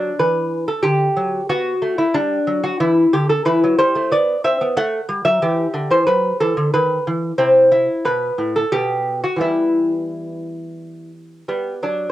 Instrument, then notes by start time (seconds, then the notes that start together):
lute
Already playing: F#3 D4
0.19 E3 B4
0.68 A4
0.83 D3 G4
1.17 F#3
1.49 B3 F#4
1.82 A3
1.98 E4
2.14 G3 D4
2.47 F#3
2.63 F#4
2.80 E3 E4
3.13 D3 G4
3.29 A4
3.45 E3 E4 B4
3.63 F#3
3.78 G3 C5
3.95 A3
4.11 B3 D5
4.44 C4 E5
4.61 B3
4.77 A3 F#5
5.09 G3
5.25 F#3 E5
5.42 E3 G4
5.74 D3
5.91 E3 C5
6.07 F#3 B4
6.40 E3 A4
6.57 D3
6.74 D#3 B4
7.07 E3
7.38 C3 C4 E4
7.72 E4
8.05 B2 B4
8.38 A2
8.56 A4
8.72 B2 G4
9.24 F#4
9.36 E3 G3 B3
9.41 E4
11.48 G3 B3
11.83 F#3 D4